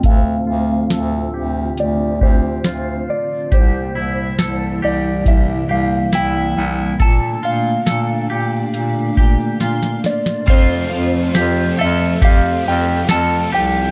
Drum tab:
CC |----------------|----------------|----------------|x---------------|
HH |x---x---x---x---|x---x---x---x---|x---x---x---x---|x---x---x---x---|
TB |----------------|----------------|----------------|----x-------x---|
SD |----o-------o---|----o-------o---|----o-------oooo|----o-------o---|
BD |o---------o-----|o-------o-------|o---------o-----|o-------o-------|